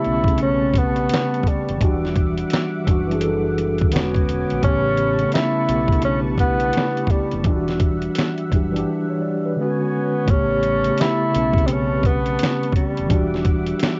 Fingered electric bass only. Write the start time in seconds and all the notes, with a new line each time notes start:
0.06 B1
1.69 F1
1.81 E1
2.88 F#1
3.94 E1
4.52 A#1
4.63 A1
5.69 B1
7.33 F1
7.45 E1
8.52 F#1
10.29 A1
11.36 B1
12.99 F1
13.10 E1